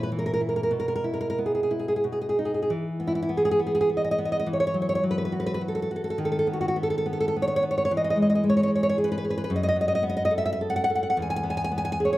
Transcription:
0.00 0.67 A#2 medium
0.00 0.10 E3 soft
0.00 0.39 E4 soft
0.00 0.10 B4 medium
0.12 0.72 E3 soft
0.19 0.25 A#4 medium
0.26 0.32 A#4 medium
0.34 0.40 A#4 medium
0.41 0.71 E4 soft
0.49 0.55 A#4 soft
0.56 0.62 A#4 medium
0.63 0.71 A#4 medium
0.71 2.00 B2 soft
0.80 0.87 A#4 medium
0.88 0.94 A#4 medium
0.96 1.04 A#4 medium
1.04 1.69 E4 soft
1.14 1.19 A#4 soft
1.21 1.29 A#4 medium
1.30 1.38 A#4 medium
1.38 2.04 B3 soft
1.46 1.53 G#4 soft
1.55 1.62 G#4 soft
1.63 1.71 G#4 soft
1.71 2.04 E4 soft
1.80 1.87 G#4 soft
1.88 1.95 G#4 soft
1.96 2.04 G#4 soft
2.04 2.67 B2 soft
2.12 2.20 G#4 soft
2.21 2.28 G#4 soft
2.29 2.37 G#4 soft
2.39 2.70 D#4 soft
2.45 2.53 G#4 soft
2.54 2.61 G#4 soft
2.62 2.70 G#4 soft
2.70 4.44 E3 medium
3.00 3.28 B3 soft
3.07 3.14 E4 medium
3.15 3.21 E4 medium
3.23 3.30 E4 medium
3.29 3.58 B3 soft
3.37 3.44 G#4 medium
3.45 3.50 G#4 medium
3.51 3.59 G#4 medium
3.59 3.88 B3 soft
3.67 3.74 G#4 medium
3.75 3.79 G#4 medium
3.81 3.88 G#4 medium
3.90 4.17 B3 soft
3.97 4.03 D#5 medium
4.04 4.10 D#5 medium
4.11 4.18 D#5 medium
4.18 4.48 B3 soft
4.25 4.31 D#5 medium
4.32 4.38 D#5 medium
4.39 4.47 D#5 medium
4.46 6.14 E3 medium
4.53 4.59 C#5 medium
4.60 4.66 C#5 medium
4.67 4.75 C#5 medium
4.74 5.02 F#3 soft
4.82 4.88 C#5 medium
4.89 4.94 C#5 medium
4.95 5.03 C#5 medium
5.03 5.89 F#3 soft
5.11 5.17 B4 medium
5.18 5.24 B4 medium
5.25 5.32 B4 medium
5.32 5.60 F#4 soft
5.40 5.45 B4 medium
5.46 5.53 B4 medium
5.54 5.61 B4 medium
5.61 5.90 F#4 soft
5.68 5.74 A4 medium
5.75 5.81 A4 medium
5.82 5.90 A4 medium
5.91 6.19 F#4 soft
5.96 6.03 A4 medium
6.04 6.09 A4 medium
6.10 6.18 A4 medium
6.18 7.86 D#3 medium
6.25 6.31 A4 medium
6.32 6.38 A4 medium
6.39 6.47 A4 medium
6.47 6.75 B3 soft
6.53 6.60 F#4 medium
6.61 6.67 F#4 medium
6.68 6.76 F#4 medium
6.76 7.05 B3 soft
6.83 6.89 A4 medium
6.90 6.97 A4 medium
6.98 7.05 A4 medium
7.06 7.35 B3 soft
7.13 7.19 A4 medium
7.20 7.27 A4 medium
7.28 7.35 A4 medium
7.36 7.61 B3 soft
7.42 7.46 C#5 medium
7.48 7.55 C#5 medium
7.56 7.63 C#5 medium
7.63 7.90 B3 soft
7.71 7.76 C#5 medium
7.78 7.84 C#5 medium
7.85 7.91 C#5 medium
7.91 9.47 E3 medium
7.97 8.03 D#5 medium
8.04 8.09 D#5 medium
8.10 8.17 D#5 medium
8.16 8.42 G#3 soft
8.22 8.28 D#5 medium
8.30 8.34 D#5 medium
8.35 8.43 D#5 medium
8.44 9.23 G#3 soft
8.49 8.55 C#5 medium
8.57 8.62 C#5 medium
8.63 8.70 C#5 medium
8.68 8.97 G#4 soft
8.75 8.82 C#5 medium
8.83 8.88 C#5 medium
8.89 8.96 C#5 medium
8.98 9.23 G#4 medium
9.04 9.10 B4 medium
9.12 9.16 B4 medium
9.18 9.24 B4 medium
9.25 9.51 G#4 medium
9.30 9.36 B4 medium
9.38 9.43 B4 medium
9.44 9.51 B4 medium
9.50 11.12 F#2 medium
9.56 9.62 D#5 medium
9.63 9.67 D#5 medium
9.68 9.76 D#5 medium
9.76 10.01 B3 soft
9.81 9.87 D#5 medium
9.88 9.94 D#5 medium
9.95 10.03 D#5 medium
10.03 10.88 B3 medium
10.09 10.15 D#5 medium
10.17 10.24 D#5 medium
10.25 10.33 D#5 medium
10.31 10.60 A4 medium
10.38 10.44 E5 medium
10.46 10.51 E5 medium
10.53 10.60 E5 medium
10.61 10.89 A4 medium
10.70 10.75 F#5 medium
10.76 10.82 F#5 medium
10.84 10.90 F#5 medium
10.90 11.17 A4 medium
10.95 11.02 F#5 medium
11.03 11.09 F#5 medium
11.10 11.16 F#5 medium
11.17 12.18 E2 medium
11.22 11.29 G#5 medium
11.30 11.35 G#5 medium
11.36 11.43 G#5 medium
11.43 11.70 B3 medium
11.50 11.56 G#5 medium
11.57 11.63 G#5 medium
11.64 11.71 G#5 medium
11.72 12.18 B3 medium
11.78 11.84 G#5 medium
11.85 11.91 G#5 medium
11.92 11.98 G#5 medium
12.00 12.18 G#4 medium
12.05 12.12 C#5 medium
12.13 12.18 C#5 medium

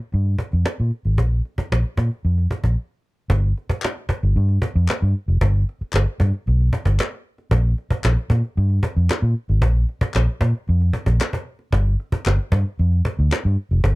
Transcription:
0.12 0.35 G2 medium
0.12 cajon slap soft
0.25 cajon slap soft
0.38 cajon bass medium
0.51 0.64 F2 medium
0.51 cajon slap soft
0.66 cajon slap medium
0.78 0.90 A#2 medium
0.78 cajon slap soft
0.91 cajon slap soft
1.05 1.18 G#1 medium
1.05 cajon slap soft
1.18 1.40 A#1 medium
1.18 cajon bass medium
1.31 cajon slap soft
1.45 cajon slap soft
1.58 muted fingered electric bass stroke soft
1.58 cajon bass medium
1.72 1.82 A#1 medium
1.72 cajon slap medium
1.85 cajon slap soft
1.97 2.09 A#2 medium
1.97 cajon bass medium
2.12 cajon slap soft
2.25 2.46 F2 medium
2.25 cajon slap soft
2.38 cajon slap soft
2.51 cajon bass medium
2.64 2.75 A#1 medium
2.64 cajon bass medium
2.64 cajon slap soft
3.30 3.51 G1 loud
3.30 cajon bass loud
3.44 cajon slap soft
3.57 cajon slap soft
3.69 muted fingered electric bass stroke soft
3.69 cajon bass medium
3.82 cajon slap loud
3.82 clap loud
3.97 cajon slap soft
4.09 muted fingered electric bass stroke soft
4.09 cajon bass medium
4.23 4.34 G1 medium
4.23 cajon slap soft
4.36 4.57 G2 loud
4.36 cajon slap soft
4.49 cajon slap soft
4.62 cajon bass loud
4.76 4.86 F2 loud
4.76 cajon slap soft
4.88 cajon slap loud
4.88 clap medium
5.02 5.13 G2 loud
5.02 cajon slap soft
5.28 5.39 F1 medium
5.28 cajon slap soft
5.41 5.63 G1 loud
5.41 cajon bass loud
5.55 cajon slap soft
5.69 cajon slap soft
5.81 muted fingered electric bass stroke soft
5.81 cajon slap soft
5.93 6.04 G1 medium
5.93 cajon slap loud
5.93 clap loud
6.08 cajon slap soft
6.20 6.31 G2 loud
6.20 cajon bass loud
6.34 cajon slap soft
6.47 6.68 B1 loud
6.47 cajon slap medium
6.61 cajon slap soft
6.73 cajon bass medium
6.85 6.96 G1 medium
6.85 cajon bass medium
6.85 cajon slap soft
7.00 cajon slap loud
7.00 clap loud
7.12 cajon slap soft
7.38 cajon slap soft
7.51 7.73 A#1 loud
7.51 cajon bass loud
7.65 cajon slap soft
7.78 cajon slap soft
7.90 muted fingered electric bass stroke medium
7.90 cajon bass medium
8.04 8.15 A#1 loud
8.04 cajon slap loud
8.04 clap medium
8.17 cajon slap soft
8.30 8.41 A#2 loud
8.30 cajon bass medium
8.45 cajon slap soft
8.57 8.79 G2 loud
8.57 cajon slap soft
8.70 cajon slap soft
8.83 cajon bass medium
8.96 9.07 F2 medium
8.96 cajon slap soft
9.10 cajon slap loud
9.10 clap loud
9.22 9.33 A#2 loud
9.22 cajon slap soft
9.49 9.62 G#1 medium
9.49 cajon slap soft
9.62 9.83 A#1 loud
9.62 cajon bass loud
9.76 cajon slap soft
9.89 cajon slap soft
10.01 muted fingered electric bass stroke medium
10.01 cajon bass loud
10.14 10.26 A#1 medium
10.14 cajon slap loud
10.14 clap loud
10.28 cajon slap soft
10.41 10.52 A#2 loud
10.41 cajon bass loud
10.55 cajon slap soft
10.68 10.90 F2 loud
10.68 cajon slap soft
10.80 cajon slap soft
10.93 cajon bass medium
11.06 11.17 A#1 loud
11.06 cajon bass medium
11.06 cajon slap soft
11.21 cajon slap loud
11.21 clap loud
11.33 cajon bass medium
11.59 cajon slap soft
11.72 11.94 G1 loud
11.72 cajon bass loud
11.86 cajon slap soft
12.00 cajon slap soft
12.12 muted fingered electric bass stroke soft
12.12 cajon bass medium
12.26 12.37 G1 loud
12.26 cajon slap loud
12.26 clap loud
12.39 cajon slap soft
12.52 12.63 G2 loud
12.52 cajon bass loud
12.67 cajon slap soft
12.79 13.00 F2 medium
12.79 cajon slap medium
12.92 cajon slap soft
13.05 cajon bass loud
13.19 13.29 D2 medium
13.19 cajon slap soft
13.32 cajon slap loud
13.32 clap medium
13.44 13.55 G2 loud
13.44 cajon slap soft
13.71 13.82 F1 medium
13.71 cajon slap soft
13.84 13.95 G1 loud
13.84 cajon bass loud

